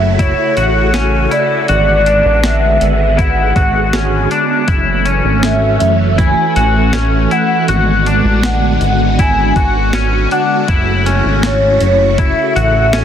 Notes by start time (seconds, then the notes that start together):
Already playing: F#1 C#3 A3 E4 F#4 E5
0.19 E4 C#5, kick, closed hi-hat
0.57 A1 F#4, closed hi-hat
0.94 C#4, snare, closed hi-hat
1.31 E4 D5, closed hi-hat
1.68 G#1 D3 G#3 B3 F#4, closed hi-hat
2.06 D4, closed hi-hat
2.26 A1
2.44 E5, snare, closed hi-hat
2.81 G#1, closed hi-hat
3.18 E4 F#5, kick, closed hi-hat
3.56 G#1 F#4, kick, closed hi-hat
3.93 C#4, snare, closed hi-hat
4.31 D4, closed hi-hat
4.68 F#1 E3 A3 C#4 E4 F#4, kick, closed hi-hat
5.05 C#4, closed hi-hat
5.25 G#1
5.43 E5, snare, closed hi-hat
5.80 F#1, closed hi-hat
6.18 E4 G#5, kick, closed hi-hat
6.56 A1 F#4, closed hi-hat
6.93 C#4, snare, closed hi-hat
7.31 E4 F#5, closed hi-hat
7.67 G#1 D3 G#3 B3 F#4, closed hi-hat
8.06 D4, closed hi-hat
8.25 A1
8.43 F#5, snare, closed hi-hat
8.81 G#1, closed hi-hat
9.19 E4 G#5, kick, closed hi-hat
9.56 G#1 F#4, kick, closed hi-hat
9.93 C#4, snare, closed hi-hat
10.31 D4 F#5, closed hi-hat
10.68 F#1 C#3 A3 E4, kick, closed hi-hat
11.06 C#4, closed hi-hat
11.25 G#1
11.43 C#5, snare, closed hi-hat
11.80 F#1, closed hi-hat
12.18 E4 E5, kick, closed hi-hat
12.56 A1 F#4, closed hi-hat
12.93 C#4, snare, closed hi-hat